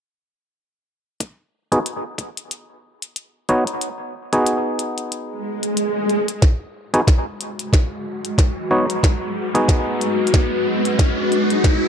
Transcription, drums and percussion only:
1.20 kick loud
1.20 closed hi-hat medium
1.72 closed hi-hat soft
1.86 closed hi-hat medium
2.18 kick medium
2.18 closed hi-hat medium
2.37 closed hi-hat soft
2.51 closed hi-hat medium
3.02 closed hi-hat soft
3.16 closed hi-hat medium
3.49 closed hi-hat soft
3.67 closed hi-hat soft
3.81 closed hi-hat medium
4.33 closed hi-hat soft
4.47 closed hi-hat medium
4.79 closed hi-hat medium
4.98 closed hi-hat soft
5.12 closed hi-hat medium
5.63 closed hi-hat soft
5.77 closed hi-hat medium
6.10 closed hi-hat soft
6.28 closed hi-hat medium
6.42 kick medium
6.42 snare soft
6.42 closed hi-hat medium
6.94 closed hi-hat medium
7.07 kick medium
7.07 snare soft
7.07 closed hi-hat medium
7.41 closed hi-hat medium
7.59 closed hi-hat soft
7.73 kick medium
7.73 snare soft
7.73 closed hi-hat medium
8.25 closed hi-hat soft
8.38 kick medium
8.38 snare soft
8.38 closed hi-hat medium
8.90 closed hi-hat medium
9.03 kick medium
9.03 snare soft
9.03 closed hi-hat medium
9.55 closed hi-hat medium
9.68 kick medium
9.68 snare soft
9.68 closed hi-hat medium
10.01 closed hi-hat medium
10.27 closed hi-hat soft
10.34 kick medium
10.34 snare medium
10.34 closed hi-hat medium
10.85 closed hi-hat soft
10.99 kick medium
10.99 snare medium
10.99 closed hi-hat medium
11.32 closed hi-hat soft
11.50 closed hi-hat medium
11.64 kick medium
11.64 snare medium
11.64 closed hi-hat medium

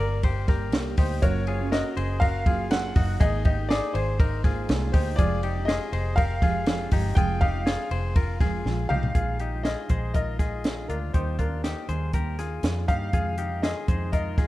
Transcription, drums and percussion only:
0.23 kick medium
0.23 ride medium
0.48 kick medium
0.48 snare soft
0.48 ride medium
0.72 snare loud
0.72 ride medium
0.98 kick medium
0.98 open hi-hat medium
0.98 ride medium
1.22 kick loud
1.22 hi-hat pedal medium
1.22 ride medium
1.47 ride medium
1.72 snare loud
1.72 ride medium
1.97 ride medium
2.21 kick medium
2.21 ride medium
2.46 kick loud
2.46 ride medium
2.71 snare loud
2.71 ride medium
2.96 kick loud
2.96 open hi-hat medium
2.96 ride medium
3.21 kick loud
3.21 hi-hat pedal medium
3.21 ride medium
3.45 kick loud
3.45 ride medium
3.70 snare loud
3.70 ride medium
3.95 ride medium
4.20 kick loud
4.20 ride medium
4.44 kick medium
4.44 snare soft
4.44 ride medium
4.69 snare loud
4.69 ride medium
4.94 kick medium
4.94 open hi-hat medium
4.94 ride medium
5.19 kick loud
5.19 hi-hat pedal medium
5.19 ride medium
5.43 ride medium
5.68 snare medium
5.68 ride medium
5.93 ride medium
6.18 kick medium
6.18 ride medium
6.42 kick loud
6.42 snare soft
6.42 ride medium
6.66 snare loud
6.66 ride medium
6.91 kick medium
6.91 open hi-hat medium
6.91 ride medium
7.17 kick loud
7.17 hi-hat pedal medium
7.17 ride medium
7.41 kick medium
7.41 ride medium
7.67 snare loud
7.67 ride medium
7.91 ride medium
8.16 kick loud
8.16 ride medium
8.41 kick loud
8.41 snare soft
8.41 ride medium
8.66 snare medium
8.90 mid tom medium
9.03 floor tom medium
9.15 kick medium
9.15 closed hi-hat medium
9.39 closed hi-hat medium
9.65 snare loud
9.65 closed hi-hat medium
9.89 kick medium
9.89 closed hi-hat medium
10.15 kick medium
10.15 closed hi-hat medium
10.39 kick medium
10.39 snare soft
10.39 closed hi-hat medium
10.64 snare loud
10.64 closed hi-hat medium
10.90 closed hi-hat medium
11.14 kick medium
11.14 closed hi-hat medium
11.39 kick medium
11.39 closed hi-hat medium
11.64 snare medium
11.64 closed hi-hat medium
11.89 closed hi-hat medium
12.13 kick medium
12.13 closed hi-hat medium
12.39 snare soft
12.39 closed hi-hat medium
12.63 snare loud
12.63 closed hi-hat medium
12.88 kick medium
12.88 closed hi-hat medium
13.13 kick medium
13.13 closed hi-hat medium
13.38 closed hi-hat medium
13.63 snare loud
13.63 closed hi-hat medium
13.88 kick loud
13.88 closed hi-hat medium
14.13 kick medium
14.13 closed hi-hat medium
14.38 kick loud
14.38 snare soft
14.38 closed hi-hat medium

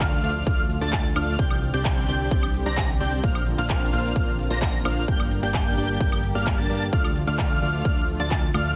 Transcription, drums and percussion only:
0.01 kick loud
0.01 clap loud
0.01 closed hi-hat medium
0.01 shaker soft
0.24 open hi-hat medium
0.24 shaker medium
0.35 closed hi-hat medium
0.35 shaker soft
0.47 kick loud
0.47 closed hi-hat medium
0.47 shaker soft
0.58 closed hi-hat soft
0.70 open hi-hat loud
0.70 shaker medium
0.81 closed hi-hat medium
0.81 shaker soft
0.93 kick loud
0.93 clap loud
0.93 closed hi-hat medium
0.93 shaker soft
1.04 closed hi-hat soft
1.16 open hi-hat medium
1.16 high woodblock medium
1.16 shaker medium
1.27 closed hi-hat medium
1.27 shaker soft
1.39 kick loud
1.39 closed hi-hat medium
1.39 shaker soft
1.51 closed hi-hat soft
1.51 high woodblock medium
1.62 open hi-hat loud
1.62 shaker medium
1.74 shaker soft
1.85 kick loud
1.85 clap loud
1.85 closed hi-hat medium
1.85 shaker soft
2.08 open hi-hat medium
2.08 shaker medium
2.20 closed hi-hat medium
2.20 shaker soft
2.31 kick loud
2.31 closed hi-hat medium
2.31 shaker soft
2.43 closed hi-hat soft
2.43 high woodblock medium
2.54 open hi-hat loud
2.54 shaker medium
2.66 closed hi-hat medium
2.66 shaker soft
2.77 kick loud
2.77 clap loud
2.77 closed hi-hat medium
2.77 shaker soft
2.89 closed hi-hat soft
3.01 open hi-hat loud
3.01 shaker medium
3.12 closed hi-hat medium
3.12 shaker soft
3.24 kick loud
3.24 closed hi-hat medium
3.24 shaker soft
3.35 closed hi-hat soft
3.35 high woodblock medium
3.47 open hi-hat loud
3.47 shaker medium
3.58 closed hi-hat soft
3.58 shaker soft
3.70 kick loud
3.70 clap loud
3.70 closed hi-hat medium
3.70 shaker soft
3.93 open hi-hat medium
3.93 shaker medium
4.04 closed hi-hat medium
4.04 shaker soft
4.16 kick loud
4.16 closed hi-hat medium
4.16 shaker soft
4.28 closed hi-hat soft
4.39 open hi-hat loud
4.39 shaker medium
4.51 closed hi-hat medium
4.51 shaker soft
4.62 kick loud
4.62 clap loud
4.62 closed hi-hat medium
4.62 shaker soft
4.74 closed hi-hat soft
4.85 open hi-hat loud
4.85 high woodblock medium
4.85 shaker medium
4.97 closed hi-hat medium
4.97 shaker soft
5.08 kick loud
5.08 closed hi-hat medium
5.08 shaker soft
5.20 closed hi-hat soft
5.20 high woodblock medium
5.31 open hi-hat loud
5.31 shaker medium
5.43 shaker soft
5.54 kick loud
5.54 clap loud
5.54 closed hi-hat medium
5.54 shaker soft
5.77 open hi-hat loud
5.77 shaker medium
5.89 closed hi-hat soft
5.89 shaker soft
6.00 kick loud
6.00 closed hi-hat medium
6.00 shaker soft
6.12 closed hi-hat soft
6.12 high woodblock medium
6.24 open hi-hat loud
6.24 shaker medium
6.35 closed hi-hat medium
6.35 shaker soft
6.47 kick loud
6.47 clap loud
6.47 closed hi-hat medium
6.47 shaker soft
6.58 closed hi-hat soft
6.70 open hi-hat loud
6.70 shaker medium
6.81 closed hi-hat medium
6.81 shaker soft
6.93 kick loud
6.93 closed hi-hat medium
6.93 shaker soft
7.04 closed hi-hat soft
7.04 high woodblock medium
7.16 open hi-hat loud
7.16 shaker medium
7.27 closed hi-hat soft
7.27 shaker soft
7.39 kick loud
7.39 clap loud
7.39 closed hi-hat medium
7.39 shaker soft
7.62 open hi-hat medium
7.62 shaker medium
7.74 closed hi-hat soft
7.74 shaker soft
7.85 kick loud
7.85 closed hi-hat medium
7.85 shaker soft
7.97 closed hi-hat soft
8.08 open hi-hat loud
8.08 shaker medium
8.20 closed hi-hat medium
8.20 shaker soft
8.31 kick loud
8.31 clap loud
8.31 closed hi-hat medium
8.31 shaker soft
8.43 closed hi-hat soft
8.54 open hi-hat medium
8.54 high woodblock medium
8.54 shaker medium
8.66 closed hi-hat medium
8.66 shaker soft

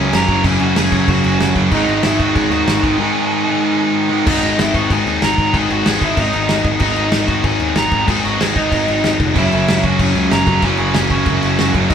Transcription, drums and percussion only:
0.13 snare loud
0.13 crash medium
0.28 kick loud
0.28 crash medium
0.44 kick loud
0.44 crash loud
0.60 crash medium
0.76 snare loud
0.76 crash loud
0.92 kick medium
0.92 crash medium
1.08 kick loud
1.08 crash loud
1.24 crash medium
1.40 snare loud
1.40 crash loud
1.56 kick medium
1.56 crash medium
1.72 kick loud
1.72 crash medium
1.89 crash medium
2.03 snare loud
2.03 crash loud
2.20 kick loud
2.20 crash medium
2.36 kick loud
2.36 crash medium
2.51 crash medium
2.67 snare loud
2.67 crash medium
2.83 kick medium
2.83 crash medium
4.27 kick loud
4.27 crash loud
4.42 crash medium
4.59 snare loud
4.59 crash loud
4.74 kick medium
4.74 crash medium
4.90 kick loud
4.90 crash medium
5.07 crash medium
5.22 snare loud
5.22 crash medium
5.38 kick medium
5.38 crash medium
5.54 kick loud
5.54 crash medium
5.70 crash medium
5.86 snare loud
5.86 crash loud
6.02 kick medium
6.02 crash medium
6.17 kick loud
6.17 crash loud
6.33 crash medium
6.49 snare loud
6.49 crash medium
6.64 kick loud
6.64 crash medium
6.80 kick loud
6.80 crash loud
6.96 crash medium
7.12 snare loud
7.12 crash loud
7.28 kick medium
7.28 crash medium
7.44 kick loud
7.44 crash medium
7.60 crash medium
7.75 snare loud
7.75 crash medium
7.91 kick medium
7.91 crash medium
8.08 kick loud
8.08 crash loud
8.25 crash medium
8.40 snare loud
8.40 crash loud
8.56 kick medium
8.56 crash medium
8.72 kick medium
8.72 crash medium
8.88 crash medium
9.04 snare loud
9.04 crash medium
9.20 kick loud
9.20 crash medium
9.36 kick loud
9.36 crash loud
9.52 crash medium
9.68 snare loud
9.68 crash loud
9.84 kick medium
9.84 crash medium
9.99 kick loud
9.99 crash loud
10.15 crash medium
10.31 snare loud
10.31 crash medium
10.47 kick medium
10.47 crash medium
10.62 kick loud
10.62 crash medium
10.77 crash medium
10.94 snare loud
10.94 crash loud
11.10 kick medium
11.10 crash medium
11.26 kick loud
11.26 crash medium
11.42 crash medium
11.59 snare loud
11.59 crash medium
11.75 kick loud
11.75 crash medium
11.90 kick loud
11.90 crash loud

